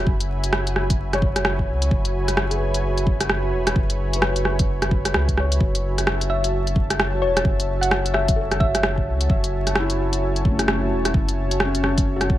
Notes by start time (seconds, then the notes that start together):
Already playing: F#4 C#5 E5 G#5 B5
0.07 F#1, kick
0.21 closed hi-hat
0.44 closed hi-hat
0.53 cross-stick
0.67 closed hi-hat
0.76 cross-stick
0.90 kick, closed hi-hat
1.13 C#5, cross-stick, closed hi-hat
1.22 kick
1.36 cross-stick, closed hi-hat
1.45 cross-stick
1.59 kick
1.69 C#2
1.82 closed hi-hat
1.91 F#1, kick
2.05 closed hi-hat
2.28 cross-stick, closed hi-hat
2.37 cross-stick
2.50 G#4, closed hi-hat
2.55 B4
2.74 closed hi-hat
2.98 closed hi-hat
3.07 kick
3.21 cross-stick, closed hi-hat
3.29 cross-stick
3.53 E1
3.67 cross-stick, closed hi-hat
3.76 F#1, kick
3.90 closed hi-hat
4.13 B4, closed hi-hat
4.22 cross-stick
4.36 closed hi-hat
4.45 cross-stick
4.59 kick, closed hi-hat
4.82 cross-stick, closed hi-hat
4.91 kick
5.05 cross-stick, closed hi-hat
5.14 C#2, cross-stick
5.28 kick, closed hi-hat
5.38 C#5, cross-stick
5.52 closed hi-hat
5.60 F#1, kick
5.75 closed hi-hat
5.82 A5
5.98 cross-stick, closed hi-hat
6.07 cross-stick
6.21 closed hi-hat
6.30 E5
6.44 closed hi-hat
6.67 closed hi-hat
6.76 kick
6.90 cross-stick, closed hi-hat
7.00 cross-stick
7.22 E1 C#5
7.27 C#5
7.37 cross-stick, closed hi-hat
7.45 F#1, kick
7.60 closed hi-hat
7.81 F#5, closed hi-hat
7.91 cross-stick
8.06 closed hi-hat
8.14 E5, cross-stick
8.28 kick, closed hi-hat
8.36 A4
8.41 C#5
8.51 cross-stick, closed hi-hat
8.60 E5, kick
8.75 cross-stick, closed hi-hat
8.83 cross-stick
8.98 kick
9.06 C#2
9.21 closed hi-hat
9.30 F#1, kick
9.44 closed hi-hat
9.67 cross-stick, closed hi-hat
9.75 cross-stick
9.80 E4
9.90 closed hi-hat
10.13 closed hi-hat
10.36 closed hi-hat
10.45 A3, kick
10.51 C#4
10.57 E4, cross-stick, closed hi-hat
10.68 cross-stick
10.91 E1
11.05 cross-stick, closed hi-hat
11.14 F#1, kick
11.29 closed hi-hat
11.51 closed hi-hat
11.60 cross-stick
11.65 C#4
11.75 closed hi-hat
11.84 cross-stick
11.98 kick, closed hi-hat
12.16 F#4
12.21 cross-stick, closed hi-hat
12.30 kick